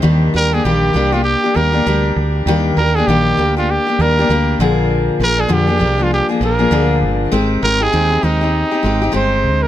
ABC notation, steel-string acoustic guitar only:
X:1
M:4/4
L:1/16
Q:"Swing 16ths" 1/4=99
K:Eb
V:1 name="Steel-string acoustic guitar"
[E,G,B,DG]2 [G,B,DG] [B,DG] [E,G,B,DG]2 [G,B,DG] [B,DG]2 [B,DG] [G,B,DG] [B,DG] [G,B,DG]4 | [E,G,B,DG]2 [G,B,DG] [B,DG] [E,G,B,DG]2 [G,B,DG] [B,DG]2 [B,DG] [G,B,DG] [B,DG] [G,B,DG]2 [B,,D,F,B,DA]2- | [B,,D,F,B,DA]2 [F,B,DA] [F,B,DA] [B,,D,F,B,DA] [F,B,DA] [F,B,DA] [F,B,DA]2 [F,B,DA] [F,B,DA] [F,B,DA] [B,,D,F,B,DA]4 | [A,CEG]2 [A,CEG] [CEG] [A,CEG] [CEG] [A,CEG] [CEG]2 [CEG] [A,CEG] [CEG] [A,CEG]4 |]